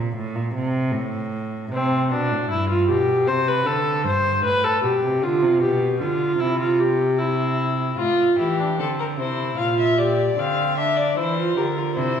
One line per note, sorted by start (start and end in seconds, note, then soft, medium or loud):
0.00 0.15 A#2 medium
0.16 0.37 A2 medium
0.36 0.54 A#2 medium
0.55 0.94 C3 medium
0.93 1.71 A2 medium
1.72 2.12 C3 medium
1.72 2.09 C4 medium
2.11 2.33 B2 medium
2.11 2.50 D4 medium
2.31 2.50 A2 medium
2.50 2.91 G2 medium
2.50 2.69 E4 medium
2.70 2.88 F4 medium
2.89 3.28 B2 medium
2.89 3.29 G4 medium
3.27 3.67 C3 medium
3.27 3.49 C5 medium
3.48 3.68 B4 medium
3.66 4.06 D3 medium
3.66 4.05 A4 medium
4.04 4.45 G2 medium
4.04 4.44 C5 medium
4.43 4.82 A2 medium
4.43 4.66 B4 medium
4.64 4.83 A4 medium
4.83 4.91 B2 medium
4.83 5.25 G4 medium
5.03 5.24 C3 medium
5.23 5.44 D3 medium
5.23 5.61 F4 medium
5.43 5.63 C3 medium
5.61 6.02 B2 medium
5.61 5.99 G4 medium
6.00 6.39 D3 medium
6.00 6.42 F4 medium
6.40 7.96 C3 medium
6.40 6.59 E4 medium
6.60 6.81 F4 medium
6.80 7.20 G4 medium
7.19 7.99 E4 medium
7.98 8.37 A2 medium
7.98 8.36 F4 medium
7.98 8.37 F4 medium
8.39 8.80 E3 medium
8.39 8.59 E4 medium
8.39 8.79 G4 medium
8.59 8.67 D4 medium
8.78 9.20 D3 medium
8.78 9.18 C4 medium
8.78 8.88 A4 medium
8.99 9.07 A#4 medium
9.18 9.57 C3 medium
9.18 9.60 E4 medium
9.18 9.57 C5 medium
9.58 10.36 A#2 medium
9.58 9.98 F4 medium
9.58 9.78 F5 medium
9.80 10.00 E5 medium
9.98 10.37 G4 medium
9.98 10.41 D5 medium
10.37 11.15 D3 medium
10.37 10.79 C4 medium
10.37 10.77 F5 medium
10.78 11.19 D4 medium
10.78 10.98 E5 medium
10.97 11.17 D5 medium
11.17 11.56 E3 medium
11.17 11.37 E4 medium
11.17 11.59 C5 medium
11.38 11.56 F4 medium
11.56 11.98 D3 medium
11.56 11.64 G4 medium
11.56 11.95 A#4 medium
11.77 11.85 F4 medium
11.96 12.20 C3 medium
11.96 12.20 E4 medium
11.96 12.20 C5 medium